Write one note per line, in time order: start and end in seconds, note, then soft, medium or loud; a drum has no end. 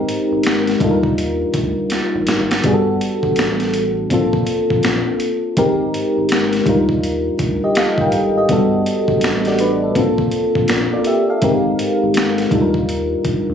0.00 0.81 G#3 medium
0.00 0.82 C4 medium
0.00 0.81 D#4 medium
0.00 0.82 G4 medium
0.00 0.82 A#4 medium
0.09 closed hi-hat medium
0.32 0.75 G#1 medium
0.43 finger snap medium
0.43 snare loud
0.43 closed hi-hat medium
0.67 snare soft
0.67 closed hi-hat soft
0.80 1.45 D#2 loud
0.80 2.60 G3 medium
0.80 2.61 D4 medium
0.80 2.61 D#4 medium
0.80 2.62 F4 medium
0.80 0.91 A4 medium
0.80 kick medium
0.80 closed hi-hat medium
0.91 2.65 A#4 medium
1.03 kick loud
1.18 closed hi-hat medium
1.54 1.75 D2 medium
1.54 kick medium
1.54 closed hi-hat medium
1.90 snare medium
1.90 closed hi-hat medium
2.15 2.26 A1 medium
2.27 2.60 G#1 medium
2.27 snare medium
2.27 closed hi-hat medium
2.51 snare medium
2.51 closed hi-hat soft
2.64 2.96 G1 loud
2.64 4.07 G3 medium
2.64 4.08 B3 medium
2.64 4.08 D4 medium
2.64 4.09 F#4 medium
2.64 2.74 G#4 medium
2.64 kick loud
2.64 closed hi-hat medium
2.74 4.12 A4 medium
3.01 closed hi-hat medium
3.23 4.06 A1 medium
3.23 kick medium
3.36 finger snap medium
3.36 snare loud
3.36 closed hi-hat medium
3.60 snare soft
3.60 closed hi-hat soft
3.74 closed hi-hat medium
4.10 4.43 A#1 medium
4.10 5.54 A#3 medium
4.10 5.54 C4 medium
4.10 5.55 D4 medium
4.10 5.55 F4 medium
4.10 5.56 A4 medium
4.10 kick medium
4.10 closed hi-hat medium
4.33 kick medium
4.47 closed hi-hat medium
4.70 5.02 A#1 loud
4.70 kick medium
4.83 finger snap medium
4.83 snare loud
4.83 closed hi-hat medium
5.20 closed hi-hat medium
5.57 5.89 G#1 loud
5.57 6.67 G#3 medium
5.57 6.67 C4 medium
5.57 6.66 D#4 medium
5.57 6.67 G4 medium
5.57 6.67 A#4 medium
5.57 kick medium
5.57 closed hi-hat medium
5.94 closed hi-hat medium
6.18 6.61 G#1 medium
6.29 finger snap medium
6.29 snare loud
6.29 closed hi-hat medium
6.53 snare soft
6.53 closed hi-hat soft
6.66 7.30 D#2 loud
6.66 8.45 G3 medium
6.66 8.46 D4 medium
6.66 8.46 D#4 medium
6.66 8.47 F4 medium
6.66 7.40 A#4 medium
6.66 kick medium
6.66 closed hi-hat medium
6.89 kick loud
7.03 closed hi-hat medium
7.39 7.60 D2 medium
7.39 kick medium
7.39 closed hi-hat medium
7.64 7.76 G4 medium
7.64 7.76 D#5 medium
7.75 7.99 A4 medium
7.75 7.99 F5 medium
7.75 finger snap medium
7.75 snare loud
7.75 closed hi-hat medium
7.98 8.10 A1 medium
7.98 8.35 A#4 medium
7.98 8.35 G5 medium
7.98 kick medium
8.12 8.45 G#1 medium
8.12 closed hi-hat medium
8.37 8.72 G4 medium
8.37 8.72 D#5 medium
8.49 8.81 G1 loud
8.49 9.93 G3 medium
8.49 9.93 B3 medium
8.49 9.22 D4 medium
8.49 9.22 F#4 medium
8.49 9.23 A4 medium
8.49 kick loud
8.49 closed hi-hat medium
8.86 closed hi-hat medium
9.08 9.91 A1 medium
9.08 kick medium
9.21 finger snap medium
9.21 snare medium
9.21 closed hi-hat medium
9.45 9.59 F#4 medium
9.45 9.59 D5 medium
9.45 snare soft
9.45 closed hi-hat soft
9.59 9.82 D4 medium
9.59 9.82 B4 medium
9.59 closed hi-hat medium
9.83 9.97 A4 medium
9.95 10.28 A#1 medium
9.95 11.39 A#3 medium
9.95 11.39 C4 medium
9.95 10.68 D4 medium
9.95 10.68 F4 medium
9.95 10.69 A4 medium
9.95 kick medium
9.95 closed hi-hat medium
10.18 kick medium
10.31 closed hi-hat medium
10.55 10.88 A#1 medium
10.55 kick medium
10.68 10.92 D4 soft
10.68 10.92 A#4 medium
10.68 finger snap medium
10.68 snare loud
10.68 closed hi-hat medium
10.93 11.06 F4 medium
10.93 11.06 D5 medium
11.04 11.29 G4 medium
11.04 11.28 E5 medium
11.04 closed hi-hat medium
11.30 11.64 A4 soft
11.30 11.64 F5 medium
11.42 11.74 G#1 loud
11.42 12.52 G#3 medium
11.42 12.52 C4 medium
11.42 12.52 D#4 medium
11.42 12.53 G4 medium
11.42 12.53 A#4 medium
11.42 kick loud
11.42 closed hi-hat medium
11.79 closed hi-hat medium
12.03 12.46 G#1 medium
12.14 finger snap medium
12.14 snare loud
12.14 closed hi-hat medium
12.38 snare soft
12.38 closed hi-hat soft
12.51 13.15 D#2 loud
12.51 13.54 G3 medium
12.51 13.54 D4 medium
12.51 13.54 D#4 medium
12.51 13.54 F4 medium
12.51 12.62 A4 medium
12.51 kick loud
12.51 closed hi-hat medium
12.62 13.54 A#4 medium
12.74 kick medium
12.89 closed hi-hat medium
13.25 13.34 D2 soft
13.25 kick medium
13.25 closed hi-hat medium
13.49 13.54 D2 medium